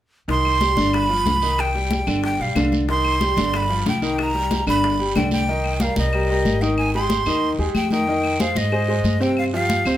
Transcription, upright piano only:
0.28 0.55 D#3 medium
0.28 0.55 D#4 medium
0.61 0.74 G3 medium
0.61 0.74 G4 medium
0.77 1.04 D3 medium
0.77 1.04 D4 medium
1.09 1.36 F3 medium
1.09 1.36 F4 medium
1.42 1.69 D#3 medium
1.42 1.69 D#4 medium
1.75 2.01 G3 medium
1.75 2.01 G4 medium
2.07 2.34 D3 medium
2.07 2.34 D4 medium
2.39 2.53 G3 medium
2.39 2.53 G4 medium
2.56 2.83 D3 medium
2.56 2.83 D4 medium
2.88 3.15 D#3 medium
2.88 3.15 D#4 medium
3.21 3.34 G3 medium
3.21 3.34 G4 medium
3.37 3.64 D3 medium
3.37 3.64 D4 medium
3.69 3.96 F3 medium
3.69 3.96 F4 medium
4.02 4.29 D#3 medium
4.02 4.29 D#4 medium
4.34 4.61 G3 medium
4.34 4.61 G4 medium
4.67 4.94 D3 medium
4.67 4.94 D4 medium
4.99 5.13 G3 medium
4.99 5.13 G4 medium
5.15 5.42 D3 medium
5.15 5.42 D4 medium
5.48 5.75 D#3 medium
5.48 5.75 D#4 medium
5.48 5.75 D#5 medium
5.81 6.07 G3 medium
5.81 6.08 G4 medium
5.81 6.08 A#4 medium
6.13 6.26 G3 medium
6.13 6.26 G4 medium
6.13 6.27 A#4 medium
6.30 6.56 G3 medium
6.30 6.56 G4 medium
6.30 6.57 A#4 medium
6.62 6.88 D#3 medium
6.62 6.89 D#4 medium
6.62 6.89 D#5 medium
6.95 7.21 G#3 medium
6.95 7.21 G4 medium
6.95 7.21 G#4 medium
7.26 7.53 D#3 medium
7.26 7.53 D#4 medium
7.26 7.53 D#5 medium
7.59 7.86 G#3 medium
7.59 7.86 G4 medium
7.59 7.86 G#4 medium
7.92 8.05 D#3 medium
7.92 8.05 D#4 medium
7.92 8.05 D#5 medium
8.08 8.35 D#3 medium
8.08 8.35 D#4 medium
8.08 8.35 D#5 medium
8.40 8.66 G#3 medium
8.40 8.67 G#4 medium
8.40 8.67 C5 medium
8.72 8.86 G#3 medium
8.72 8.86 G#4 medium
8.72 8.86 C5 medium
8.88 9.15 G#3 medium
8.88 9.15 G#4 medium
8.88 9.16 C5 medium
9.20 9.47 C3 medium
9.20 9.47 C4 medium
9.20 9.48 C5 medium
9.53 9.80 F3 medium
9.53 9.80 F4 medium
9.53 9.80 G4 medium
9.86 9.97 C3 medium
9.86 9.97 C4 medium
9.86 9.97 C5 medium

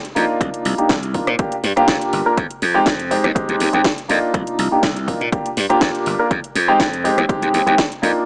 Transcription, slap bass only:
0.16 0.24 F2 loud
0.41 0.49 C2 loud
0.65 0.78 C2 loud
0.78 muted slap bass stroke soft
0.90 1.20 C2 medium
1.27 1.35 A#2 medium
1.64 1.72 G2 loud
1.76 muted slap bass stroke soft
1.88 1.96 F2 medium
2.13 2.21 G1 medium
2.38 2.46 F2 loud
2.62 2.78 F2 loud
2.87 3.16 F2 medium
3.24 3.31 D#2 medium
3.36 muted slap bass stroke soft
3.49 3.56 D#2 medium
3.60 3.68 D#2 medium
3.74 3.81 D#2 loud
4.10 4.18 F2 loud
4.34 4.42 C2 loud
4.59 4.71 C2 loud
4.72 muted slap bass stroke soft
4.83 5.13 C2 medium
5.21 5.28 A#2 medium
5.57 5.65 G2 loud
5.70 muted slap bass stroke soft
5.82 5.90 F2 medium
6.06 6.14 G1 medium
6.31 6.39 F2 loud
6.55 6.71 F2 loud
6.80 7.10 F2 medium
7.18 7.25 D#2 medium
7.29 muted slap bass stroke soft
7.42 7.49 D#2 loud
7.54 7.62 D#2 medium
7.67 7.74 D#2 loud
8.03 8.11 F2 loud

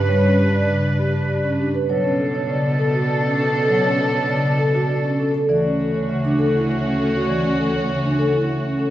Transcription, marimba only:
0.09 0.29 G3 medium
0.69 0.89 C#3 medium
1.60 1.79 D4 medium
1.90 2.09 F#3 medium
2.49 2.69 C#3 medium
3.39 3.59 C#4 medium
3.69 3.89 F#3 medium
4.30 4.49 C#3 medium
5.20 5.39 C#4 medium
5.49 5.69 E3 medium
6.09 6.29 C#3 medium
6.99 7.19 C#4 medium
7.29 7.49 E3 medium
7.89 8.09 C#3 medium
8.79 8.90 C#4 medium

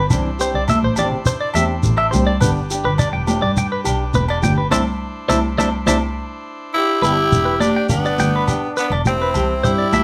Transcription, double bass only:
0.11 0.51 C2 loud
0.54 0.67 C2 medium
0.82 0.96 A1 medium
1.12 1.52 C3 medium
1.55 1.68 E2 medium
1.84 2.10 A1 loud
2.14 2.40 C2 loud
2.41 2.82 G1 medium
2.85 2.98 G1 medium
3.13 3.26 E1 medium
3.42 3.82 G2 medium
3.86 3.99 B1 medium
4.14 4.41 E1 loud
4.43 4.70 G1 loud
4.72 4.83 C2 medium
5.29 5.40 C2 loud
5.58 5.69 C2 medium
5.86 5.98 C2 loud
7.02 7.16 G1 medium
7.32 7.59 E1 medium
7.90 8.04 G1 medium
8.18 8.46 G1 medium
8.91 9.32 E1 medium
9.35 9.62 C2 medium
9.64 9.78 G2 medium
9.92 10.04 C2 medium

